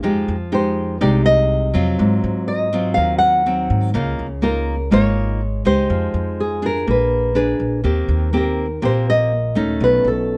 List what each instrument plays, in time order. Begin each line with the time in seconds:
0.03 upright bass F2, nylon-string guitar F3 G#3 D#4 G4
0.28 upright bass F2
0.52 nylon-string guitar G#3 D#4 G4 C5
1.01 upright bass C2, nylon-string guitar C3 G#3 D#4 G4 D5
1.26 nylon-string guitar D#5
1.74 upright bass F2, nylon-string guitar F#3 C4 F4
1.98 nylon-string guitar G#2, upright bass G#2
2.24 upright bass G#2
2.48 nylon-string guitar D#5
2.73 nylon-string guitar F#3 C4 F4
2.94 upright bass D#2, nylon-string guitar D#3 F5
3.18 nylon-string guitar F#5
3.46 nylon-string guitar F#3 C4
3.70 upright bass G#2
3.94 upright bass C#2, nylon-string guitar C#3 A#3 D#4 F4
4.19 upright bass C#2
4.42 nylon-string guitar A#3 D#4 F4 A#4
4.91 upright bass G#1, nylon-string guitar G#3 A#3 D#4 F4 C#5
5.65 upright bass C#2, nylon-string guitar G#3 D#4 G4 C5
5.90 upright bass F2, nylon-string guitar F3
6.14 upright bass F2
6.40 nylon-string guitar G#4
6.62 nylon-string guitar D4 G#4 A#4
6.87 upright bass A#1, nylon-string guitar A#3 B4
7.35 nylon-string guitar D4 G#4 B4
7.60 upright bass A#1
7.84 upright bass D#2, nylon-string guitar D#3 A#3 C4 G4
8.09 upright bass D#2
8.33 nylon-string guitar A#3 C4 G4
8.37 nylon-string guitar A#4
8.82 upright bass A#1, nylon-string guitar A#2 A#3 C4 G4 C5
9.10 nylon-string guitar D#5
9.55 upright bass D#2, nylon-string guitar A3 C#4 D#4
9.80 upright bass B1, nylon-string guitar B2 B4
10.04 upright bass B1, nylon-string guitar A4